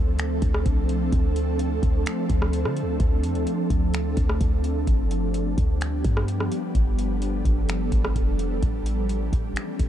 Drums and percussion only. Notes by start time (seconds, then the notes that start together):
0.19 finger snap, closed hi-hat
0.42 kick, closed hi-hat
0.54 cross-stick
0.66 kick, closed hi-hat
0.89 closed hi-hat
1.12 kick, closed hi-hat
1.36 closed hi-hat
1.59 closed hi-hat
1.83 kick, closed hi-hat
2.06 finger snap, closed hi-hat
2.30 kick, closed hi-hat
2.42 cross-stick
2.53 closed hi-hat
2.65 cross-stick
2.77 closed hi-hat
3.00 kick, closed hi-hat
3.23 closed hi-hat
3.35 closed hi-hat
3.47 closed hi-hat
3.70 kick, closed hi-hat
3.94 finger snap, closed hi-hat
4.17 kick, closed hi-hat
4.29 cross-stick
4.41 kick, closed hi-hat
4.64 closed hi-hat
4.87 kick, closed hi-hat
5.11 closed hi-hat
5.34 closed hi-hat
5.58 kick, closed hi-hat
5.81 finger snap, closed hi-hat
6.04 kick, closed hi-hat
6.17 cross-stick
6.28 closed hi-hat
6.40 cross-stick
6.52 closed hi-hat
6.75 kick, closed hi-hat
6.99 closed hi-hat
7.22 closed hi-hat
7.45 kick, closed hi-hat
7.69 finger snap, closed hi-hat
7.92 kick, closed hi-hat
8.04 cross-stick
8.16 kick, closed hi-hat
8.39 closed hi-hat
8.63 kick, closed hi-hat
8.86 closed hi-hat
9.09 closed hi-hat
9.33 kick, closed hi-hat
9.56 finger snap, closed hi-hat
9.79 kick, closed hi-hat